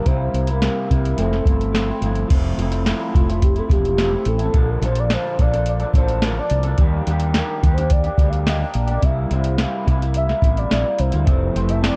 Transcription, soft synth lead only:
0.06 C5
0.49 A#4
1.19 A4
3.15 F4
3.43 G4
3.58 A4
3.72 G4
4.00 G4
4.27 A4
4.70 A#4
4.84 C5
4.99 D5
5.13 C5
5.41 D5
5.69 D5
5.96 C5
6.24 A#4
6.39 D5
7.35 A#4
7.73 C5
7.92 D5
8.29 F5
8.48 D#5
8.76 D5
9.04 E5
9.33 C5
10.16 E5
10.58 D5
11.00 C5
11.56 C5
11.70 E5
11.83 D5

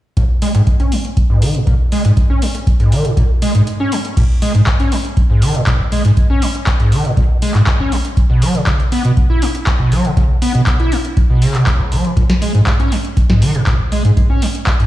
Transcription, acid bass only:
0.17 A#2
0.42 G#3
0.55 G#2
0.80 C#4
0.92 F3
1.30 G#2
1.42 D#3
1.55 A#2
1.67 A#2
1.92 G#3
2.05 G#2
2.30 C#4
2.42 F3
2.80 G#2
2.92 D#3
3.05 A#2
3.17 A#2
3.42 G#3
3.55 G#2
3.80 C#4
3.92 F3
4.17 A#2
4.42 G#3
4.55 G#2
4.80 C#4
4.92 F3
5.30 G#2
5.42 D#3
5.55 A#2
5.67 A#2
5.92 G#3
6.05 G#2
6.30 C#4
6.42 F3
6.80 G#2
6.92 D#3
7.05 A#2
7.17 A#2
7.42 G#3
7.55 G#2
7.80 C#4
7.92 F3
8.30 B2
8.42 F#3
8.55 C#3
8.67 C#3
8.92 B3
9.05 B2
9.30 E4
9.42 G#3
9.80 B2
9.92 F#3
10.05 C#3
10.17 C#3
10.42 B3
10.55 B2
10.80 E4
10.92 G#3
11.30 B2
11.42 C#3
11.55 B2
11.67 C#2
11.92 F#3
12.05 E3
12.17 A#2
12.42 G#3
12.55 G#2
12.80 C#4
12.92 F3
13.30 G#2
13.42 D#3
13.55 A#2
13.67 A#2
13.92 G#3
14.05 G#2
14.30 C#4
14.42 F3
14.80 G#2

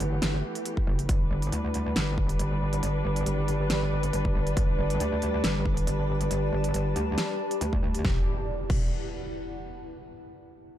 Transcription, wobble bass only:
0.00 G1
0.22 G1
0.87 F#1
1.09 G1
1.31 G1
1.52 D2
1.96 G1
2.39 G1
2.83 G1
3.05 G1
3.26 G1
4.13 G1
4.35 G1
4.57 G1
4.79 G1
5.00 D2
5.44 G1
5.87 G1
6.31 G1
6.52 G1
6.74 G1
6.96 D2
7.61 D2
7.83 D2
8.05 E1
8.70 E1

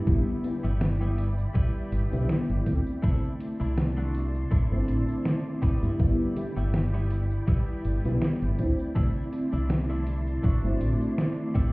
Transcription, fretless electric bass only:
0.07 G1
0.64 G1
1.92 G1
2.12 B1
2.50 G1
2.66 D2
3.04 C2
3.61 C2
4.52 muted fretless electric bass stroke
4.72 G1
4.89 A1
5.83 G2
6.00 G1
6.57 G1
7.85 G1
8.05 B1
8.42 G1
8.59 D2
8.96 C2
9.53 C2
10.44 muted fretless electric bass stroke
10.64 G1
10.81 A1

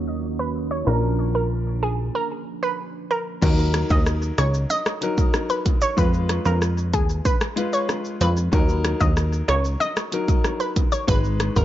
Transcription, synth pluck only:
0.39 B4
0.71 C#5
0.87 A#4
1.35 A#4
1.83 G#4
2.15 A#4
2.63 B4
3.11 A#4
3.91 D#5
4.38 C#5
4.70 D#5
5.50 B4
5.82 C#5
5.98 B4
6.46 A#4
6.94 G#4
7.25 B4
7.73 C#5
8.21 B4
9.01 D#5
9.48 C#5
9.80 D#5
10.60 B4
10.92 C#5
11.08 B4
11.56 A#4

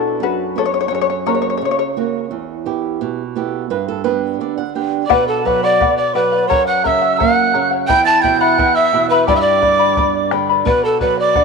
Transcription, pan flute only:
5.06 D5
5.12 B4
5.28 A4
5.45 B4
5.63 D5
5.97 D5
6.15 B4
6.48 C#5
6.67 F#5
6.85 E5
7.20 F#5
7.87 G5
8.06 A5
8.22 G5
8.40 F#5
8.75 E5
9.09 B4
9.28 D5
9.36 E5
9.41 D5
10.66 B4
10.85 A4
11.01 B4
11.19 D5

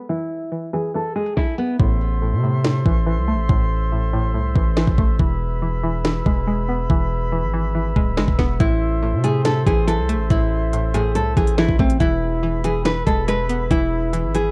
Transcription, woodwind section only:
1.79 A4 C5 E5 C6
5.20 G#4 B4 B5
8.60 A4 C5 C6
12.01 G#4 B4 E5 B5

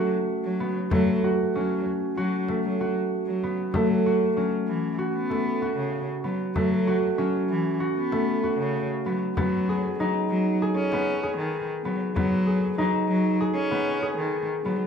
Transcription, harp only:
Already playing: A3 B3 C#4 F#4
0.60 B3
0.92 A3
1.24 F#4
1.55 C#4
2.17 F#4
2.49 A3
2.81 F#4
3.43 B3
3.75 A3
4.06 F#4
4.37 C#4
4.99 F#4
5.30 A3
5.62 F#4
6.24 B3
6.56 A3
6.87 F#4
7.18 C#4
7.80 F#4
8.12 A3
8.43 F#4
9.06 B3
9.37 B3
9.69 G#4
10.00 D#4
10.62 G#4
10.93 B3
11.23 G#4
11.85 B3
12.16 B3
12.47 G#4
12.78 D#4
13.40 G#4
13.71 B3
14.03 G#4
14.65 B3

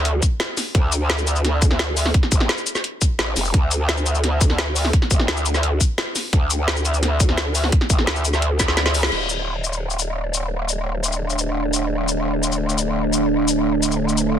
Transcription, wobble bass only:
Already playing: D2
0.75 D2
2.32 A1
3.19 A1
3.36 F1
3.54 D2
5.11 A1
5.28 D2
6.33 D2
7.90 A1
8.07 D2
8.60 D2
9.12 D1

